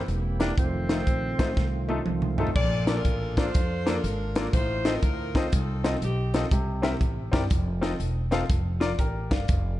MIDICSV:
0, 0, Header, 1, 7, 480
1, 0, Start_track
1, 0, Key_signature, -2, "major"
1, 0, Tempo, 495050
1, 556, Time_signature, 4, 2, 24, 8
1, 9501, End_track
2, 0, Start_track
2, 0, Title_t, "Grand piano"
2, 0, Program_c, 0, 0
2, 384, Note_on_c, 0, 58, 71
2, 384, Note_on_c, 0, 64, 67
2, 390, Note_on_c, 0, 67, 61
2, 397, Note_on_c, 0, 70, 77
2, 470, Note_off_c, 0, 58, 0
2, 470, Note_off_c, 0, 64, 0
2, 473, Note_off_c, 0, 67, 0
2, 477, Note_off_c, 0, 70, 0
2, 864, Note_on_c, 0, 57, 66
2, 870, Note_on_c, 0, 63, 62
2, 874, Note_on_c, 0, 65, 64
2, 879, Note_on_c, 0, 72, 75
2, 950, Note_off_c, 0, 57, 0
2, 954, Note_off_c, 0, 63, 0
2, 956, Note_off_c, 0, 65, 0
2, 958, Note_off_c, 0, 72, 0
2, 1345, Note_on_c, 0, 57, 76
2, 1348, Note_on_c, 0, 63, 71
2, 1353, Note_on_c, 0, 65, 74
2, 1360, Note_on_c, 0, 72, 85
2, 1432, Note_off_c, 0, 57, 0
2, 1433, Note_off_c, 0, 63, 0
2, 1435, Note_off_c, 0, 65, 0
2, 1439, Note_off_c, 0, 72, 0
2, 1829, Note_on_c, 0, 57, 81
2, 1834, Note_on_c, 0, 63, 72
2, 1840, Note_on_c, 0, 65, 67
2, 1845, Note_on_c, 0, 69, 83
2, 1913, Note_off_c, 0, 57, 0
2, 1916, Note_off_c, 0, 63, 0
2, 1919, Note_off_c, 0, 65, 0
2, 1922, Note_off_c, 0, 69, 0
2, 2309, Note_on_c, 0, 57, 77
2, 2316, Note_on_c, 0, 63, 72
2, 2322, Note_on_c, 0, 65, 69
2, 2326, Note_on_c, 0, 69, 85
2, 2394, Note_off_c, 0, 57, 0
2, 2397, Note_off_c, 0, 63, 0
2, 2400, Note_off_c, 0, 65, 0
2, 2402, Note_off_c, 0, 69, 0
2, 2486, Note_on_c, 0, 46, 62
2, 2788, Note_on_c, 0, 58, 74
2, 2793, Note_on_c, 0, 62, 64
2, 2795, Note_on_c, 0, 65, 62
2, 2803, Note_on_c, 0, 69, 68
2, 2805, Note_on_c, 0, 74, 78
2, 2874, Note_off_c, 0, 58, 0
2, 2876, Note_off_c, 0, 62, 0
2, 2877, Note_off_c, 0, 65, 0
2, 2881, Note_off_c, 0, 69, 0
2, 2882, Note_off_c, 0, 74, 0
2, 3236, Note_off_c, 0, 46, 0
2, 3271, Note_on_c, 0, 58, 75
2, 3274, Note_on_c, 0, 62, 67
2, 3278, Note_on_c, 0, 65, 66
2, 3280, Note_on_c, 0, 69, 70
2, 3285, Note_on_c, 0, 74, 81
2, 3355, Note_off_c, 0, 58, 0
2, 3356, Note_off_c, 0, 62, 0
2, 3358, Note_off_c, 0, 65, 0
2, 3359, Note_off_c, 0, 69, 0
2, 3362, Note_off_c, 0, 74, 0
2, 3741, Note_on_c, 0, 58, 78
2, 3746, Note_on_c, 0, 62, 68
2, 3750, Note_on_c, 0, 65, 66
2, 3754, Note_on_c, 0, 69, 67
2, 3759, Note_on_c, 0, 74, 78
2, 3830, Note_off_c, 0, 58, 0
2, 3832, Note_off_c, 0, 62, 0
2, 3834, Note_off_c, 0, 65, 0
2, 3836, Note_off_c, 0, 69, 0
2, 3839, Note_off_c, 0, 74, 0
2, 4225, Note_on_c, 0, 58, 77
2, 4228, Note_on_c, 0, 62, 72
2, 4233, Note_on_c, 0, 65, 65
2, 4237, Note_on_c, 0, 69, 65
2, 4242, Note_on_c, 0, 74, 81
2, 4311, Note_off_c, 0, 58, 0
2, 4313, Note_off_c, 0, 62, 0
2, 4316, Note_off_c, 0, 65, 0
2, 4317, Note_off_c, 0, 69, 0
2, 4320, Note_off_c, 0, 74, 0
2, 4405, Note_on_c, 0, 45, 62
2, 4705, Note_on_c, 0, 60, 75
2, 4710, Note_on_c, 0, 65, 73
2, 4712, Note_on_c, 0, 63, 65
2, 4715, Note_on_c, 0, 69, 71
2, 4722, Note_on_c, 0, 75, 77
2, 4791, Note_off_c, 0, 60, 0
2, 4794, Note_off_c, 0, 65, 0
2, 4795, Note_off_c, 0, 63, 0
2, 4796, Note_off_c, 0, 69, 0
2, 4800, Note_off_c, 0, 75, 0
2, 5154, Note_off_c, 0, 45, 0
2, 5188, Note_on_c, 0, 60, 73
2, 5192, Note_on_c, 0, 63, 69
2, 5197, Note_on_c, 0, 65, 69
2, 5200, Note_on_c, 0, 69, 67
2, 5205, Note_on_c, 0, 75, 81
2, 5272, Note_off_c, 0, 60, 0
2, 5275, Note_off_c, 0, 63, 0
2, 5277, Note_off_c, 0, 65, 0
2, 5278, Note_off_c, 0, 69, 0
2, 5281, Note_off_c, 0, 75, 0
2, 5662, Note_on_c, 0, 60, 79
2, 5668, Note_on_c, 0, 63, 69
2, 5671, Note_on_c, 0, 65, 70
2, 5673, Note_on_c, 0, 69, 67
2, 5679, Note_on_c, 0, 75, 88
2, 5750, Note_off_c, 0, 60, 0
2, 5753, Note_off_c, 0, 63, 0
2, 5754, Note_off_c, 0, 65, 0
2, 5755, Note_off_c, 0, 69, 0
2, 5758, Note_off_c, 0, 75, 0
2, 6147, Note_on_c, 0, 60, 75
2, 6153, Note_on_c, 0, 63, 69
2, 6157, Note_on_c, 0, 65, 73
2, 6159, Note_on_c, 0, 69, 72
2, 6164, Note_on_c, 0, 75, 84
2, 6232, Note_off_c, 0, 60, 0
2, 6235, Note_off_c, 0, 63, 0
2, 6237, Note_off_c, 0, 65, 0
2, 6238, Note_off_c, 0, 69, 0
2, 6240, Note_off_c, 0, 75, 0
2, 6319, Note_on_c, 0, 48, 71
2, 6615, Note_on_c, 0, 60, 91
2, 6618, Note_on_c, 0, 64, 79
2, 6623, Note_on_c, 0, 67, 78
2, 6627, Note_on_c, 0, 70, 86
2, 6629, Note_on_c, 0, 76, 99
2, 6706, Note_off_c, 0, 60, 0
2, 6707, Note_off_c, 0, 64, 0
2, 6710, Note_off_c, 0, 67, 0
2, 6712, Note_off_c, 0, 70, 0
2, 6713, Note_off_c, 0, 76, 0
2, 7071, Note_off_c, 0, 48, 0
2, 7093, Note_on_c, 0, 60, 91
2, 7101, Note_on_c, 0, 64, 81
2, 7104, Note_on_c, 0, 67, 81
2, 7105, Note_on_c, 0, 70, 86
2, 7110, Note_on_c, 0, 74, 93
2, 7185, Note_off_c, 0, 60, 0
2, 7189, Note_off_c, 0, 64, 0
2, 7190, Note_off_c, 0, 67, 0
2, 7190, Note_off_c, 0, 70, 0
2, 7193, Note_off_c, 0, 74, 0
2, 7577, Note_on_c, 0, 60, 94
2, 7580, Note_on_c, 0, 63, 84
2, 7581, Note_on_c, 0, 65, 86
2, 7588, Note_on_c, 0, 69, 77
2, 7593, Note_on_c, 0, 75, 98
2, 7667, Note_off_c, 0, 60, 0
2, 7668, Note_off_c, 0, 63, 0
2, 7669, Note_off_c, 0, 65, 0
2, 7672, Note_off_c, 0, 69, 0
2, 7674, Note_off_c, 0, 75, 0
2, 8058, Note_on_c, 0, 60, 87
2, 8061, Note_on_c, 0, 63, 76
2, 8066, Note_on_c, 0, 65, 84
2, 8071, Note_on_c, 0, 69, 87
2, 8073, Note_on_c, 0, 77, 103
2, 8147, Note_off_c, 0, 60, 0
2, 8149, Note_off_c, 0, 63, 0
2, 8151, Note_off_c, 0, 65, 0
2, 8154, Note_off_c, 0, 69, 0
2, 8155, Note_off_c, 0, 77, 0
2, 8535, Note_on_c, 0, 65, 85
2, 8544, Note_on_c, 0, 70, 81
2, 8550, Note_on_c, 0, 74, 104
2, 8626, Note_off_c, 0, 65, 0
2, 8630, Note_off_c, 0, 70, 0
2, 8633, Note_off_c, 0, 74, 0
2, 8720, Note_on_c, 0, 70, 68
2, 8723, Note_on_c, 0, 67, 53
2, 9015, Note_off_c, 0, 70, 0
2, 9016, Note_off_c, 0, 67, 0
2, 9025, Note_on_c, 0, 77, 64
2, 9030, Note_on_c, 0, 74, 54
2, 9483, Note_off_c, 0, 77, 0
2, 9485, Note_off_c, 0, 74, 0
2, 9501, End_track
3, 0, Start_track
3, 0, Title_t, "Saxophone section"
3, 0, Program_c, 1, 65
3, 2475, Note_on_c, 1, 74, 119
3, 2480, Note_on_c, 1, 69, 86
3, 2482, Note_on_c, 1, 65, 83
3, 2845, Note_off_c, 1, 74, 0
3, 2868, Note_off_c, 1, 65, 0
3, 2874, Note_on_c, 1, 70, 105
3, 2880, Note_on_c, 1, 65, 73
3, 2884, Note_on_c, 1, 62, 76
3, 3267, Note_off_c, 1, 69, 0
3, 3269, Note_off_c, 1, 65, 0
3, 3270, Note_off_c, 1, 70, 0
3, 3272, Note_on_c, 1, 72, 113
3, 3279, Note_on_c, 1, 69, 82
3, 3281, Note_on_c, 1, 65, 76
3, 3800, Note_off_c, 1, 62, 0
3, 3832, Note_off_c, 1, 65, 0
3, 3835, Note_off_c, 1, 72, 0
3, 3839, Note_on_c, 1, 70, 101
3, 3842, Note_on_c, 1, 62, 69
3, 3843, Note_on_c, 1, 65, 68
3, 4195, Note_off_c, 1, 69, 0
3, 4213, Note_off_c, 1, 70, 0
3, 4225, Note_on_c, 1, 70, 94
3, 4363, Note_off_c, 1, 62, 0
3, 4364, Note_off_c, 1, 65, 0
3, 4383, Note_off_c, 1, 70, 0
3, 4396, Note_on_c, 1, 72, 106
3, 4398, Note_on_c, 1, 63, 74
3, 4398, Note_on_c, 1, 65, 77
3, 4784, Note_off_c, 1, 63, 0
3, 4784, Note_off_c, 1, 65, 0
3, 4793, Note_off_c, 1, 72, 0
3, 4795, Note_on_c, 1, 65, 70
3, 4795, Note_on_c, 1, 70, 102
3, 4796, Note_on_c, 1, 63, 66
3, 5190, Note_off_c, 1, 70, 0
3, 5192, Note_on_c, 1, 72, 100
3, 5351, Note_off_c, 1, 63, 0
3, 5359, Note_off_c, 1, 72, 0
3, 5359, Note_on_c, 1, 60, 57
3, 5362, Note_on_c, 1, 63, 64
3, 5364, Note_on_c, 1, 69, 82
3, 5715, Note_off_c, 1, 65, 0
3, 5807, Note_off_c, 1, 69, 0
3, 5832, Note_off_c, 1, 60, 0
3, 5832, Note_off_c, 1, 63, 0
3, 5843, Note_on_c, 1, 63, 56
3, 5844, Note_on_c, 1, 60, 51
3, 5848, Note_on_c, 1, 67, 80
3, 6211, Note_off_c, 1, 67, 0
3, 6286, Note_off_c, 1, 60, 0
3, 6286, Note_off_c, 1, 63, 0
3, 9501, End_track
4, 0, Start_track
4, 0, Title_t, "Tenor saxophone"
4, 0, Program_c, 2, 66
4, 389, Note_on_c, 2, 62, 96
4, 545, Note_off_c, 2, 62, 0
4, 559, Note_on_c, 2, 60, 108
4, 1961, Note_off_c, 2, 60, 0
4, 9501, End_track
5, 0, Start_track
5, 0, Title_t, "Tonewheel organ"
5, 0, Program_c, 3, 16
5, 0, Note_on_c, 3, 52, 67
5, 0, Note_on_c, 3, 58, 63
5, 0, Note_on_c, 3, 60, 63
5, 0, Note_on_c, 3, 67, 75
5, 521, Note_off_c, 3, 67, 0
5, 541, Note_off_c, 3, 52, 0
5, 542, Note_off_c, 3, 58, 0
5, 565, Note_on_c, 3, 51, 66
5, 568, Note_on_c, 3, 57, 61
5, 570, Note_on_c, 3, 65, 72
5, 2445, Note_off_c, 3, 60, 0
5, 2463, Note_off_c, 3, 51, 0
5, 2465, Note_off_c, 3, 57, 0
5, 2466, Note_off_c, 3, 65, 0
5, 9501, End_track
6, 0, Start_track
6, 0, Title_t, "Upright bass"
6, 0, Program_c, 4, 32
6, 78, Note_on_c, 4, 28, 96
6, 486, Note_off_c, 4, 28, 0
6, 560, Note_on_c, 4, 29, 98
6, 967, Note_off_c, 4, 29, 0
6, 1038, Note_on_c, 4, 34, 82
6, 1303, Note_off_c, 4, 34, 0
6, 1350, Note_on_c, 4, 33, 80
6, 1493, Note_off_c, 4, 33, 0
6, 1521, Note_on_c, 4, 36, 86
6, 1928, Note_off_c, 4, 36, 0
6, 1997, Note_on_c, 4, 36, 80
6, 2406, Note_off_c, 4, 36, 0
6, 2478, Note_on_c, 4, 34, 107
6, 2886, Note_off_c, 4, 34, 0
6, 2955, Note_on_c, 4, 33, 84
6, 3365, Note_off_c, 4, 33, 0
6, 3442, Note_on_c, 4, 41, 86
6, 3848, Note_off_c, 4, 41, 0
6, 3914, Note_on_c, 4, 32, 97
6, 4323, Note_off_c, 4, 32, 0
6, 4397, Note_on_c, 4, 33, 102
6, 4805, Note_off_c, 4, 33, 0
6, 4873, Note_on_c, 4, 38, 87
6, 5283, Note_off_c, 4, 38, 0
6, 5360, Note_on_c, 4, 36, 100
6, 5766, Note_off_c, 4, 36, 0
6, 5833, Note_on_c, 4, 35, 87
6, 6242, Note_off_c, 4, 35, 0
6, 6318, Note_on_c, 4, 36, 95
6, 6725, Note_off_c, 4, 36, 0
6, 6795, Note_on_c, 4, 33, 94
6, 7061, Note_off_c, 4, 33, 0
6, 7109, Note_on_c, 4, 31, 112
6, 7251, Note_off_c, 4, 31, 0
6, 7280, Note_on_c, 4, 29, 101
6, 7686, Note_off_c, 4, 29, 0
6, 7752, Note_on_c, 4, 28, 100
6, 8162, Note_off_c, 4, 28, 0
6, 8238, Note_on_c, 4, 29, 111
6, 8645, Note_off_c, 4, 29, 0
6, 8714, Note_on_c, 4, 33, 90
6, 8980, Note_off_c, 4, 33, 0
6, 9026, Note_on_c, 4, 31, 84
6, 9170, Note_off_c, 4, 31, 0
6, 9201, Note_on_c, 4, 29, 107
6, 9501, Note_off_c, 4, 29, 0
6, 9501, End_track
7, 0, Start_track
7, 0, Title_t, "Drums"
7, 80, Note_on_c, 9, 42, 79
7, 177, Note_off_c, 9, 42, 0
7, 387, Note_on_c, 9, 42, 58
7, 394, Note_on_c, 9, 38, 100
7, 484, Note_off_c, 9, 42, 0
7, 491, Note_off_c, 9, 38, 0
7, 558, Note_on_c, 9, 36, 102
7, 558, Note_on_c, 9, 42, 83
7, 655, Note_off_c, 9, 36, 0
7, 655, Note_off_c, 9, 42, 0
7, 867, Note_on_c, 9, 38, 105
7, 871, Note_on_c, 9, 42, 62
7, 964, Note_off_c, 9, 38, 0
7, 968, Note_off_c, 9, 42, 0
7, 1037, Note_on_c, 9, 36, 76
7, 1039, Note_on_c, 9, 42, 66
7, 1134, Note_off_c, 9, 36, 0
7, 1136, Note_off_c, 9, 42, 0
7, 1350, Note_on_c, 9, 36, 73
7, 1353, Note_on_c, 9, 42, 67
7, 1356, Note_on_c, 9, 38, 95
7, 1447, Note_off_c, 9, 36, 0
7, 1450, Note_off_c, 9, 42, 0
7, 1453, Note_off_c, 9, 38, 0
7, 1519, Note_on_c, 9, 38, 55
7, 1522, Note_on_c, 9, 36, 107
7, 1616, Note_off_c, 9, 38, 0
7, 1619, Note_off_c, 9, 36, 0
7, 1829, Note_on_c, 9, 48, 61
7, 1926, Note_off_c, 9, 48, 0
7, 1994, Note_on_c, 9, 47, 80
7, 2091, Note_off_c, 9, 47, 0
7, 2152, Note_on_c, 9, 45, 75
7, 2249, Note_off_c, 9, 45, 0
7, 2308, Note_on_c, 9, 43, 88
7, 2392, Note_off_c, 9, 43, 0
7, 2392, Note_on_c, 9, 43, 80
7, 2479, Note_on_c, 9, 36, 109
7, 2479, Note_on_c, 9, 49, 88
7, 2489, Note_off_c, 9, 43, 0
7, 2576, Note_off_c, 9, 36, 0
7, 2576, Note_off_c, 9, 49, 0
7, 2786, Note_on_c, 9, 38, 116
7, 2790, Note_on_c, 9, 42, 65
7, 2883, Note_off_c, 9, 38, 0
7, 2887, Note_off_c, 9, 42, 0
7, 2956, Note_on_c, 9, 36, 81
7, 2957, Note_on_c, 9, 42, 76
7, 3053, Note_off_c, 9, 36, 0
7, 3054, Note_off_c, 9, 42, 0
7, 3269, Note_on_c, 9, 36, 77
7, 3272, Note_on_c, 9, 42, 73
7, 3275, Note_on_c, 9, 38, 101
7, 3366, Note_off_c, 9, 36, 0
7, 3369, Note_off_c, 9, 42, 0
7, 3372, Note_off_c, 9, 38, 0
7, 3435, Note_on_c, 9, 42, 101
7, 3442, Note_on_c, 9, 36, 125
7, 3532, Note_off_c, 9, 42, 0
7, 3539, Note_off_c, 9, 36, 0
7, 3749, Note_on_c, 9, 38, 99
7, 3752, Note_on_c, 9, 42, 66
7, 3846, Note_off_c, 9, 38, 0
7, 3849, Note_off_c, 9, 42, 0
7, 3918, Note_on_c, 9, 42, 87
7, 4015, Note_off_c, 9, 42, 0
7, 4223, Note_on_c, 9, 42, 69
7, 4229, Note_on_c, 9, 38, 123
7, 4320, Note_off_c, 9, 42, 0
7, 4326, Note_off_c, 9, 38, 0
7, 4395, Note_on_c, 9, 42, 88
7, 4396, Note_on_c, 9, 36, 113
7, 4492, Note_off_c, 9, 42, 0
7, 4493, Note_off_c, 9, 36, 0
7, 4703, Note_on_c, 9, 38, 112
7, 4707, Note_on_c, 9, 42, 66
7, 4800, Note_off_c, 9, 38, 0
7, 4804, Note_off_c, 9, 42, 0
7, 4874, Note_on_c, 9, 36, 85
7, 4874, Note_on_c, 9, 42, 76
7, 4971, Note_off_c, 9, 36, 0
7, 4971, Note_off_c, 9, 42, 0
7, 5186, Note_on_c, 9, 36, 82
7, 5190, Note_on_c, 9, 42, 72
7, 5193, Note_on_c, 9, 38, 107
7, 5283, Note_off_c, 9, 36, 0
7, 5287, Note_off_c, 9, 42, 0
7, 5290, Note_off_c, 9, 38, 0
7, 5356, Note_on_c, 9, 42, 113
7, 5360, Note_on_c, 9, 36, 120
7, 5453, Note_off_c, 9, 42, 0
7, 5457, Note_off_c, 9, 36, 0
7, 5667, Note_on_c, 9, 38, 104
7, 5670, Note_on_c, 9, 42, 70
7, 5764, Note_off_c, 9, 38, 0
7, 5767, Note_off_c, 9, 42, 0
7, 5837, Note_on_c, 9, 42, 89
7, 5934, Note_off_c, 9, 42, 0
7, 6146, Note_on_c, 9, 42, 64
7, 6152, Note_on_c, 9, 38, 112
7, 6243, Note_off_c, 9, 42, 0
7, 6249, Note_off_c, 9, 38, 0
7, 6316, Note_on_c, 9, 36, 106
7, 6318, Note_on_c, 9, 42, 86
7, 6413, Note_off_c, 9, 36, 0
7, 6415, Note_off_c, 9, 42, 0
7, 6625, Note_on_c, 9, 38, 114
7, 6630, Note_on_c, 9, 42, 73
7, 6722, Note_off_c, 9, 38, 0
7, 6727, Note_off_c, 9, 42, 0
7, 6795, Note_on_c, 9, 36, 84
7, 6799, Note_on_c, 9, 42, 74
7, 6892, Note_off_c, 9, 36, 0
7, 6895, Note_off_c, 9, 42, 0
7, 7107, Note_on_c, 9, 36, 79
7, 7113, Note_on_c, 9, 42, 73
7, 7116, Note_on_c, 9, 38, 108
7, 7204, Note_off_c, 9, 36, 0
7, 7210, Note_off_c, 9, 42, 0
7, 7213, Note_off_c, 9, 38, 0
7, 7275, Note_on_c, 9, 42, 110
7, 7280, Note_on_c, 9, 36, 119
7, 7372, Note_off_c, 9, 42, 0
7, 7377, Note_off_c, 9, 36, 0
7, 7589, Note_on_c, 9, 38, 103
7, 7592, Note_on_c, 9, 42, 74
7, 7686, Note_off_c, 9, 38, 0
7, 7689, Note_off_c, 9, 42, 0
7, 7756, Note_on_c, 9, 42, 90
7, 7853, Note_off_c, 9, 42, 0
7, 8063, Note_on_c, 9, 42, 70
7, 8069, Note_on_c, 9, 38, 119
7, 8160, Note_off_c, 9, 42, 0
7, 8166, Note_off_c, 9, 38, 0
7, 8237, Note_on_c, 9, 42, 88
7, 8238, Note_on_c, 9, 36, 110
7, 8334, Note_off_c, 9, 42, 0
7, 8335, Note_off_c, 9, 36, 0
7, 8543, Note_on_c, 9, 38, 110
7, 8547, Note_on_c, 9, 42, 69
7, 8640, Note_off_c, 9, 38, 0
7, 8644, Note_off_c, 9, 42, 0
7, 8713, Note_on_c, 9, 42, 72
7, 8715, Note_on_c, 9, 36, 85
7, 8810, Note_off_c, 9, 42, 0
7, 8812, Note_off_c, 9, 36, 0
7, 9028, Note_on_c, 9, 36, 81
7, 9029, Note_on_c, 9, 42, 75
7, 9032, Note_on_c, 9, 38, 107
7, 9125, Note_off_c, 9, 36, 0
7, 9126, Note_off_c, 9, 42, 0
7, 9129, Note_off_c, 9, 38, 0
7, 9194, Note_on_c, 9, 42, 107
7, 9201, Note_on_c, 9, 36, 115
7, 9291, Note_off_c, 9, 42, 0
7, 9298, Note_off_c, 9, 36, 0
7, 9501, End_track
0, 0, End_of_file